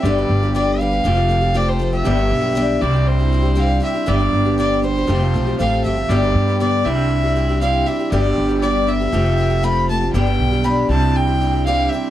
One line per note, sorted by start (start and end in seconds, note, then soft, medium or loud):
0.00 0.27 G1 medium
0.00 1.01 D5 medium
0.00 0.54 D5 medium
0.04 0.16 G2 medium
0.04 0.17 D3 medium
0.04 0.17 G3 medium
0.04 1.03 B3 medium
0.04 0.17 D4 medium
0.04 1.04 G4 medium
0.04 0.17 G4 medium
0.04 0.17 B4 medium
0.04 1.04 B5 medium
0.18 0.43 G3 soft
0.18 0.43 D4 soft
0.18 0.42 G4 soft
0.18 0.41 B4 medium
0.30 1.01 G1 medium
0.43 0.54 G3 soft
0.43 0.55 D4 soft
0.43 0.55 G4 soft
0.43 0.54 B4 soft
0.54 0.79 G2 medium
0.54 0.80 D3 medium
0.54 0.78 G3 medium
0.54 0.80 D4 medium
0.54 0.80 G4 medium
0.54 0.80 B4 medium
0.54 0.81 D5 medium
0.80 0.92 G3 medium
0.80 0.92 D4 medium
0.80 0.92 G4 medium
0.80 0.90 B4 medium
0.80 1.58 F5 medium
0.91 1.04 G3 soft
0.91 1.04 D4 soft
0.91 1.05 G4 soft
0.91 1.04 B4 soft
1.04 2.02 F1 medium
1.04 1.17 F3 medium
1.04 1.17 A3 medium
1.04 1.16 C4 medium
1.04 1.15 F4 medium
1.04 1.14 G4 medium
1.04 2.81 G4 medium
1.04 2.05 A5 medium
1.15 1.28 C4 soft
1.15 1.29 F4 soft
1.15 1.29 G4 soft
1.28 1.42 A3 medium
1.28 1.42 C4 medium
1.28 1.41 F4 medium
1.28 1.39 G4 medium
1.41 1.53 C4 soft
1.41 1.54 F4 soft
1.41 1.54 G4 soft
1.54 1.80 F3 medium
1.54 1.78 A3 medium
1.54 1.78 C4 medium
1.54 1.80 F4 medium
1.54 1.81 G4 medium
1.54 1.70 D5 medium
1.69 1.93 C5 medium
1.79 1.92 A3 medium
1.79 1.92 C4 medium
1.79 1.93 F4 medium
1.79 1.92 G4 medium
1.93 2.06 C4 soft
1.93 2.06 F4 soft
1.93 2.05 G4 soft
1.93 2.83 E5 medium
2.05 2.29 G1 medium
2.05 2.18 G2 medium
2.05 2.18 D3 medium
2.05 2.18 G3 medium
2.05 2.17 B3 medium
2.05 2.16 D4 medium
2.05 2.15 G4 medium
2.05 5.07 D5 medium
2.05 2.81 B5 medium
2.16 2.43 G3 soft
2.16 2.42 B3 soft
2.16 2.41 D4 soft
2.16 2.40 G4 soft
2.31 2.78 B1 medium
2.41 2.55 G3 soft
2.41 2.56 B3 soft
2.41 2.55 D4 soft
2.41 2.55 G4 soft
2.55 2.81 G2 medium
2.55 2.81 D3 medium
2.55 2.81 G3 medium
2.55 2.82 B3 medium
2.55 2.81 D4 loud
2.55 2.82 G4 medium
2.79 3.79 C2 medium
2.79 4.06 C3 medium
2.79 2.94 G3 medium
2.79 4.06 C4 medium
2.79 2.94 D4 medium
2.79 4.05 E4 medium
2.79 3.09 D5 medium
2.79 4.06 C6 medium
2.83 2.94 E4 medium
2.83 2.92 G4 medium
2.93 3.20 D4 soft
2.93 3.19 E4 soft
2.93 3.18 G4 soft
3.07 3.60 C5 medium
3.19 3.31 D4 soft
3.19 3.33 E4 soft
3.19 3.32 G4 soft
3.32 3.45 G3 medium
3.32 3.44 D4 medium
3.32 3.43 E4 medium
3.32 3.42 G4 medium
3.43 3.55 D4 soft
3.43 3.55 E4 soft
3.43 3.56 G4 soft
3.55 3.82 C3 medium
3.55 3.79 G3 medium
3.55 3.79 D4 medium
3.55 3.80 E4 medium
3.55 3.81 G4 medium
3.55 3.83 F5 loud
3.80 3.94 G3 medium
3.80 3.94 D4 medium
3.80 3.94 E4 medium
3.80 3.93 G4 medium
3.80 4.10 E5 medium
3.94 4.06 D4 soft
3.94 4.07 E4 soft
3.94 4.07 G4 soft
4.06 4.31 G1 medium
4.06 4.19 G2 medium
4.06 4.20 D3 medium
4.06 4.20 G3 medium
4.06 4.20 B3 medium
4.06 4.19 D4 medium
4.06 5.06 G4 medium
4.06 4.18 G4 medium
4.06 4.58 D5 medium
4.06 5.07 B5 medium
4.20 4.46 G3 soft
4.20 4.45 B3 soft
4.20 4.44 D4 soft
4.20 4.44 G4 soft
4.33 5.05 G1 medium
4.45 4.59 G3 soft
4.45 4.58 B3 soft
4.45 4.58 D4 soft
4.45 4.58 G4 medium
4.58 4.83 G2 medium
4.58 4.84 D3 medium
4.58 4.81 G3 medium
4.58 4.82 B3 medium
4.58 4.82 D4 medium
4.58 4.83 G4 medium
4.58 4.82 D5 medium
4.82 4.95 G3 medium
4.82 4.96 B3 medium
4.82 4.96 D4 medium
4.82 4.94 G4 medium
4.82 5.55 C5 medium
4.96 5.07 G3 soft
4.96 5.08 B3 soft
4.96 5.09 D4 soft
4.96 5.09 G4 soft
5.07 5.32 F1 medium
5.07 5.21 F3 medium
5.07 5.21 A3 medium
5.07 5.21 C4 medium
5.07 5.21 F4 medium
5.07 6.83 G4 medium
5.07 5.20 G4 medium
5.07 6.09 F5 medium
5.07 6.09 A5 medium
5.21 5.35 C4 soft
5.21 5.34 F4 soft
5.21 5.34 G4 soft
5.34 5.57 B1 medium
5.34 5.47 A3 medium
5.34 5.48 C4 medium
5.34 5.46 F4 medium
5.34 5.45 G4 medium
5.46 5.59 C4 soft
5.46 5.59 F4 soft
5.46 5.59 G4 soft
5.59 5.83 A1 medium
5.59 5.84 F3 medium
5.59 5.83 A3 medium
5.59 5.84 C4 medium
5.59 5.85 F4 medium
5.59 5.85 G4 medium
5.59 5.83 F5 medium
5.84 6.08 G1 medium
5.84 5.97 A3 medium
5.84 5.97 C4 medium
5.84 5.97 F4 medium
5.84 5.96 G4 medium
5.84 6.11 E5 medium
5.97 6.10 C4 soft
5.97 6.10 F4 soft
5.97 6.10 G4 soft
6.09 6.33 G1 medium
6.09 6.22 G2 medium
6.09 6.23 D3 medium
6.09 6.23 G3 medium
6.09 6.23 B3 medium
6.09 6.23 D4 medium
6.09 6.21 G4 medium
6.09 9.10 D5 medium
6.09 6.60 D5 medium
6.09 6.84 B5 medium
6.22 6.49 G3 soft
6.22 6.49 B3 soft
6.22 6.48 D4 soft
6.22 6.47 G4 medium
6.35 6.82 G2 medium
6.48 6.60 G3 soft
6.48 6.60 B3 soft
6.48 6.60 D4 soft
6.48 6.60 G4 soft
6.60 6.86 G2 medium
6.60 6.86 D3 medium
6.60 6.83 G3 medium
6.60 6.85 B3 medium
6.60 6.84 D4 medium
6.60 6.86 G4 medium
6.60 6.87 D5 medium
6.84 7.83 C2 medium
6.84 8.10 C3 medium
6.84 6.98 G3 medium
6.84 8.10 C4 medium
6.84 6.98 D4 medium
6.84 8.10 E4 medium
6.84 6.97 E4 medium
6.84 6.96 G4 medium
6.84 7.61 E5 medium
6.84 8.11 C6 medium
6.97 7.24 D4 soft
6.97 7.24 E4 soft
6.97 7.23 G4 medium
7.24 7.35 D4 soft
7.24 7.36 E4 soft
7.24 7.36 G4 soft
7.36 7.49 G3 medium
7.36 7.49 D4 medium
7.36 7.49 E4 medium
7.36 7.48 G4 medium
7.49 7.61 D4 soft
7.49 7.62 E4 soft
7.49 7.62 G4 medium
7.61 7.87 C3 medium
7.61 7.85 G3 medium
7.61 7.86 D4 medium
7.61 7.86 E4 medium
7.61 7.87 G4 medium
7.61 7.88 F5 medium
7.86 7.99 G3 medium
7.86 8.00 D4 medium
7.86 7.99 E4 medium
7.86 7.98 G4 medium
7.86 8.11 E5 medium
7.99 8.12 D4 soft
7.99 8.12 E4 soft
7.99 8.12 G4 soft
8.12 8.36 G1 medium
8.12 8.25 G2 medium
8.12 8.25 D3 medium
8.12 8.25 G3 medium
8.12 8.25 B3 medium
8.12 8.24 D4 medium
8.12 10.87 G4 medium
8.12 8.23 G4 medium
8.12 8.59 D5 loud
8.12 9.12 B5 medium
8.24 8.50 G3 soft
8.24 8.49 B3 soft
8.24 8.49 D4 soft
8.24 8.47 G4 medium
8.38 9.09 G1 medium
8.49 8.62 G3 soft
8.49 8.62 B3 soft
8.49 8.63 D4 soft
8.49 8.62 G4 medium
8.61 8.88 G2 medium
8.61 8.88 D3 medium
8.61 8.86 G3 medium
8.61 8.87 B3 medium
8.61 8.87 D4 medium
8.61 8.89 G4 medium
8.61 8.90 D5 medium
8.88 9.01 B3 medium
8.88 9.00 D4 medium
8.88 8.99 G4 medium
8.88 9.66 E5 medium
9.00 9.13 G3 soft
9.00 9.13 B3 soft
9.00 9.14 D4 soft
9.00 9.13 G4 soft
9.12 10.10 F1 medium
9.12 9.25 F3 medium
9.12 9.26 A3 medium
9.12 9.25 C4 medium
9.12 10.13 F4 medium
9.12 9.24 F4 medium
9.12 9.23 G4 medium
9.12 10.13 A5 medium
9.25 9.37 C4 soft
9.25 9.38 F4 soft
9.25 9.38 G4 soft
9.37 9.51 A3 medium
9.37 9.51 C4 medium
9.37 9.50 F4 medium
9.37 9.49 G4 medium
9.50 9.62 C4 soft
9.50 9.63 F4 soft
9.50 9.63 G4 medium
9.63 9.89 F3 medium
9.63 9.88 A3 medium
9.63 9.89 C4 medium
9.63 9.89 F4 medium
9.63 9.89 G4 medium
9.63 9.89 B5 loud
9.89 10.02 A3 medium
9.89 10.02 C4 medium
9.89 10.02 F4 medium
9.89 10.00 G4 medium
9.89 10.12 A5 medium
10.01 10.15 C4 soft
10.01 10.15 F4 soft
10.01 10.14 G4 soft
10.11 10.37 G1 medium
10.11 10.27 G2 medium
10.11 10.27 D3 medium
10.11 10.27 G3 medium
10.11 12.10 D5 medium
10.11 10.66 G5 loud
10.11 10.88 B5 medium
10.15 10.26 B3 medium
10.15 10.26 D4 medium
10.15 10.25 G4 medium
10.26 10.53 G3 soft
10.26 10.53 B3 soft
10.26 10.52 D4 soft
10.26 10.50 G4 medium
10.39 10.86 B1 medium
10.51 10.63 G3 soft
10.51 10.64 B3 soft
10.51 10.64 D4 soft
10.51 10.65 G4 soft
10.64 10.90 G2 medium
10.64 10.90 D3 medium
10.64 10.88 G3 medium
10.64 10.90 B3 medium
10.64 10.89 D4 medium
10.64 10.90 G4 medium
10.64 10.89 B5 medium
10.89 11.87 C2 medium
10.89 12.10 C3 medium
10.89 11.02 G3 medium
10.89 12.10 C4 medium
10.89 11.03 D4 medium
10.89 12.10 E4 medium
10.89 11.02 E4 medium
10.89 11.01 G4 medium
10.89 11.18 A5 loud
10.89 12.10 C6 medium
11.02 11.28 D4 soft
11.02 11.27 E4 soft
11.02 11.26 G4 soft
11.16 11.65 G5 loud
11.27 11.40 D4 soft
11.27 11.41 E4 soft
11.27 11.40 G4 soft
11.41 11.53 G3 medium
11.41 11.54 D4 medium
11.41 11.54 E4 medium
11.41 11.52 G4 medium
11.53 11.67 D4 soft
11.53 11.67 E4 soft
11.53 11.66 G4 soft
11.65 11.92 C3 medium
11.65 11.91 G3 medium
11.65 11.92 D4 medium
11.65 11.92 E4 medium
11.65 11.93 G4 medium
11.65 11.91 F5 loud
11.89 12.10 G3 medium
11.89 12.10 E5 medium
11.94 12.10 D4 medium
11.94 12.10 E4 medium
11.94 12.10 G4 medium